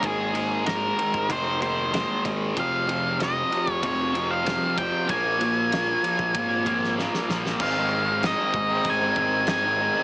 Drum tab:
CC |----------------|----------------|----------------|x---x---x---x---|
RD |x-x-x-x-x-x-x-x-|x-x-x-x-x-x-x-x-|x-x-x-x-x-x-----|----------------|
SD |----o-------o---|----o-------o---|----o------ooooo|----o-------o---|
BD |o------oo-----o-|o------oo-----o-|o------oo-o-----|o-----o-o-o-----|